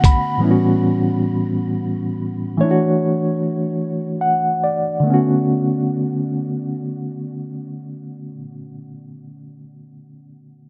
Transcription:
0, 0, Header, 1, 3, 480
1, 0, Start_track
1, 0, Key_signature, 2, "minor"
1, 0, Tempo, 731707
1, 259, Time_signature, 6, 3, 24, 8
1, 1705, Tempo, 800000
1, 2665, Tempo, 888889
1, 6173, End_track
2, 0, Start_track
2, 0, Title_t, "Reed electric piano"
2, 0, Program_c, 0, 4
2, 0, Control_c, 0, 64, 127
2, 0, Note_on_c, 0, 50, 72
2, 0, Note_on_c, 0, 57, 66
2, 0, Note_on_c, 0, 59, 61
2, 0, Note_on_c, 0, 61, 59
2, 0, Note_on_c, 0, 66, 73
2, 0, Note_on_c, 0, 78, 58
2, 35, Note_on_c, 0, 83, 53
2, 225, Note_off_c, 0, 50, 0
2, 231, Note_off_c, 0, 57, 0
2, 236, Note_off_c, 0, 59, 0
2, 242, Note_off_c, 0, 61, 0
2, 247, Note_off_c, 0, 66, 0
2, 247, Note_on_c, 0, 45, 61
2, 248, Note_off_c, 0, 83, 0
2, 256, Note_on_c, 0, 52, 59
2, 265, Note_on_c, 0, 55, 63
2, 268, Control_c, 0, 64, 0
2, 270, Note_off_c, 0, 78, 0
2, 272, Note_on_c, 0, 59, 60
2, 281, Note_on_c, 0, 61, 62
2, 293, Note_on_c, 0, 64, 57
2, 318, Note_off_c, 0, 64, 0
2, 332, Note_on_c, 0, 66, 66
2, 369, Control_c, 0, 64, 127
2, 1672, Note_off_c, 0, 45, 0
2, 1677, Note_off_c, 0, 52, 0
2, 1681, Note_off_c, 0, 55, 0
2, 1685, Note_off_c, 0, 59, 0
2, 1688, Note_on_c, 0, 52, 66
2, 1689, Note_off_c, 0, 61, 0
2, 1700, Note_on_c, 0, 57, 58
2, 1710, Note_on_c, 0, 73, 65
2, 1713, Control_c, 0, 64, 0
2, 1714, Note_off_c, 0, 66, 0
2, 1720, Note_on_c, 0, 62, 58
2, 1731, Note_on_c, 0, 64, 55
2, 1760, Note_off_c, 0, 64, 0
2, 1771, Note_on_c, 0, 66, 70
2, 1816, Control_c, 0, 64, 127
2, 2672, Note_on_c, 0, 78, 52
2, 2883, Note_off_c, 0, 78, 0
2, 2901, Note_on_c, 0, 74, 48
2, 3097, Note_on_c, 0, 50, 67
2, 3104, Note_off_c, 0, 52, 0
2, 3109, Note_off_c, 0, 57, 0
2, 3114, Note_off_c, 0, 73, 0
2, 3116, Note_on_c, 0, 57, 57
2, 3118, Note_off_c, 0, 62, 0
2, 3119, Note_off_c, 0, 74, 0
2, 3134, Note_on_c, 0, 59, 56
2, 3139, Control_c, 0, 64, 0
2, 3141, Note_off_c, 0, 66, 0
2, 3153, Note_on_c, 0, 61, 58
2, 3172, Note_on_c, 0, 66, 66
2, 3227, Control_c, 0, 64, 127
2, 4861, Note_off_c, 0, 50, 0
2, 4880, Note_off_c, 0, 57, 0
2, 4898, Note_off_c, 0, 59, 0
2, 4917, Note_off_c, 0, 61, 0
2, 4936, Note_off_c, 0, 66, 0
2, 6173, End_track
3, 0, Start_track
3, 0, Title_t, "Drums"
3, 24, Note_on_c, 9, 36, 62
3, 29, Note_on_c, 9, 42, 54
3, 90, Note_off_c, 9, 36, 0
3, 94, Note_off_c, 9, 42, 0
3, 6173, End_track
0, 0, End_of_file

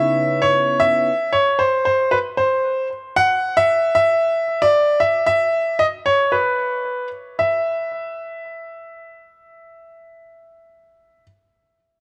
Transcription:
0, 0, Header, 1, 3, 480
1, 0, Start_track
1, 0, Tempo, 526316
1, 973, Time_signature, 4, 2, 24, 8
1, 10945, End_track
2, 0, Start_track
2, 0, Title_t, "Grand piano"
2, 0, Program_c, 0, 0
2, 0, Note_on_c, 0, 76, 115
2, 380, Note_on_c, 0, 73, 91
2, 401, Note_off_c, 0, 76, 0
2, 726, Note_on_c, 0, 76, 97
2, 741, Note_off_c, 0, 73, 0
2, 1209, Note_on_c, 0, 73, 87
2, 1224, Note_off_c, 0, 76, 0
2, 1448, Note_on_c, 0, 72, 84
2, 1458, Note_off_c, 0, 73, 0
2, 1676, Note_off_c, 0, 72, 0
2, 1690, Note_on_c, 0, 72, 81
2, 1927, Note_on_c, 0, 71, 82
2, 1939, Note_off_c, 0, 72, 0
2, 1981, Note_off_c, 0, 71, 0
2, 2165, Note_on_c, 0, 72, 82
2, 2615, Note_off_c, 0, 72, 0
2, 2885, Note_on_c, 0, 78, 108
2, 3254, Note_on_c, 0, 76, 112
2, 3273, Note_off_c, 0, 78, 0
2, 3588, Note_off_c, 0, 76, 0
2, 3602, Note_on_c, 0, 76, 105
2, 4212, Note_on_c, 0, 74, 96
2, 4238, Note_off_c, 0, 76, 0
2, 4542, Note_off_c, 0, 74, 0
2, 4561, Note_on_c, 0, 76, 91
2, 4788, Note_off_c, 0, 76, 0
2, 4801, Note_on_c, 0, 76, 100
2, 5282, Note_on_c, 0, 75, 88
2, 5302, Note_off_c, 0, 76, 0
2, 5337, Note_off_c, 0, 75, 0
2, 5524, Note_on_c, 0, 73, 85
2, 5762, Note_on_c, 0, 71, 73
2, 5776, Note_off_c, 0, 73, 0
2, 6451, Note_off_c, 0, 71, 0
2, 6738, Note_on_c, 0, 76, 79
2, 10236, Note_off_c, 0, 76, 0
2, 10945, End_track
3, 0, Start_track
3, 0, Title_t, "FM electric piano"
3, 0, Program_c, 1, 5
3, 0, Control_c, 1, 64, 127
3, 0, Note_on_c, 1, 49, 74
3, 0, Note_on_c, 1, 59, 70
3, 0, Note_on_c, 1, 61, 67
3, 0, Note_on_c, 1, 63, 88
3, 0, Note_on_c, 1, 64, 66
3, 0, Note_on_c, 1, 71, 103
3, 0, Note_on_c, 1, 73, 82
3, 541, Note_off_c, 1, 49, 0
3, 545, Note_off_c, 1, 61, 0
3, 549, Note_off_c, 1, 59, 0
3, 553, Note_off_c, 1, 64, 0
3, 557, Note_off_c, 1, 73, 0
3, 983, Control_c, 1, 64, 0
3, 989, Note_off_c, 1, 71, 0
3, 990, Note_off_c, 1, 63, 0
3, 10945, End_track
0, 0, End_of_file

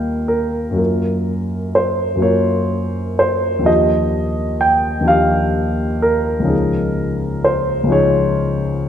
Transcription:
0, 0, Header, 1, 2, 480
1, 0, Start_track
1, 0, Tempo, 966184
1, 393, Time_signature, 6, 3, 24, 8
1, 1836, Tempo, 943396
1, 4478, End_track
2, 0, Start_track
2, 0, Title_t, "Grand piano"
2, 0, Program_c, 0, 0
2, 0, Control_c, 0, 64, 127
2, 0, Note_on_c, 0, 39, 34
2, 0, Note_on_c, 0, 55, 28
2, 0, Note_on_c, 0, 58, 28
2, 0, Note_on_c, 0, 65, 28
2, 0, Note_on_c, 0, 70, 29
2, 0, Note_on_c, 0, 77, 54
2, 0, Note_on_c, 0, 79, 58
2, 132, Note_off_c, 0, 70, 0
2, 140, Note_on_c, 0, 70, 52
2, 149, Note_off_c, 0, 77, 0
2, 350, Note_off_c, 0, 39, 0
2, 350, Note_on_c, 0, 42, 33
2, 354, Note_off_c, 0, 55, 0
2, 359, Note_on_c, 0, 54, 28
2, 360, Note_off_c, 0, 58, 0
2, 364, Note_off_c, 0, 65, 0
2, 367, Note_on_c, 0, 58, 27
2, 377, Note_on_c, 0, 65, 28
2, 380, Note_off_c, 0, 70, 0
2, 387, Note_on_c, 0, 70, 26
2, 401, Control_c, 0, 64, 0
2, 405, Note_off_c, 0, 79, 0
2, 498, Control_c, 0, 64, 127
2, 870, Note_on_c, 0, 72, 51
2, 1063, Note_off_c, 0, 42, 0
2, 1071, Note_off_c, 0, 54, 0
2, 1071, Note_on_c, 0, 42, 35
2, 1079, Note_on_c, 0, 54, 29
2, 1080, Note_off_c, 0, 58, 0
2, 1087, Note_off_c, 0, 65, 0
2, 1087, Note_on_c, 0, 58, 28
2, 1094, Note_off_c, 0, 70, 0
2, 1094, Note_on_c, 0, 65, 30
2, 1103, Note_on_c, 0, 70, 30
2, 1104, Note_on_c, 0, 73, 59
2, 1112, Note_off_c, 0, 72, 0
2, 1585, Note_on_c, 0, 72, 57
2, 1594, Note_off_c, 0, 73, 0
2, 1784, Note_on_c, 0, 39, 36
2, 1793, Note_on_c, 0, 53, 29
2, 1794, Note_off_c, 0, 42, 0
2, 1798, Note_off_c, 0, 54, 0
2, 1802, Note_off_c, 0, 58, 0
2, 1803, Note_on_c, 0, 62, 29
2, 1804, Note_off_c, 0, 65, 0
2, 1810, Note_off_c, 0, 70, 0
2, 1811, Note_on_c, 0, 65, 29
2, 1819, Note_on_c, 0, 75, 59
2, 1820, Note_on_c, 0, 67, 29
2, 1829, Note_off_c, 0, 72, 0
2, 1845, Control_c, 0, 64, 0
2, 1921, Control_c, 0, 64, 127
2, 2300, Note_on_c, 0, 79, 63
2, 2304, Note_off_c, 0, 75, 0
2, 2495, Note_off_c, 0, 39, 0
2, 2502, Note_on_c, 0, 39, 36
2, 2504, Note_off_c, 0, 53, 0
2, 2512, Note_off_c, 0, 62, 0
2, 2512, Note_on_c, 0, 53, 31
2, 2520, Note_on_c, 0, 62, 30
2, 2522, Note_off_c, 0, 65, 0
2, 2526, Note_off_c, 0, 67, 0
2, 2531, Note_on_c, 0, 65, 33
2, 2539, Note_on_c, 0, 77, 63
2, 2541, Note_on_c, 0, 67, 30
2, 2548, Note_off_c, 0, 79, 0
2, 3021, Note_on_c, 0, 70, 57
2, 3031, Note_off_c, 0, 77, 0
2, 3210, Note_on_c, 0, 37, 37
2, 3214, Note_off_c, 0, 53, 0
2, 3222, Note_on_c, 0, 53, 31
2, 3228, Note_off_c, 0, 39, 0
2, 3232, Note_on_c, 0, 61, 31
2, 3237, Note_off_c, 0, 62, 0
2, 3239, Note_on_c, 0, 63, 32
2, 3242, Note_off_c, 0, 65, 0
2, 3247, Note_off_c, 0, 67, 0
2, 3250, Note_on_c, 0, 68, 30
2, 3283, Control_c, 0, 64, 0
2, 3367, Control_c, 0, 64, 127
2, 3744, Note_on_c, 0, 72, 51
2, 3745, Note_off_c, 0, 70, 0
2, 3935, Note_off_c, 0, 37, 0
2, 3943, Note_on_c, 0, 37, 41
2, 3948, Note_off_c, 0, 53, 0
2, 3955, Note_off_c, 0, 61, 0
2, 3955, Note_on_c, 0, 53, 33
2, 3958, Note_off_c, 0, 63, 0
2, 3964, Note_off_c, 0, 68, 0
2, 3965, Note_on_c, 0, 61, 34
2, 3974, Note_on_c, 0, 63, 36
2, 3980, Note_on_c, 0, 68, 33
2, 3986, Note_on_c, 0, 73, 65
2, 3991, Note_off_c, 0, 72, 0
2, 4471, Note_off_c, 0, 73, 0
2, 4478, Note_off_c, 0, 37, 0
2, 4478, Note_off_c, 0, 53, 0
2, 4478, Note_off_c, 0, 61, 0
2, 4478, Note_off_c, 0, 63, 0
2, 4478, Note_off_c, 0, 68, 0
2, 4478, End_track
0, 0, End_of_file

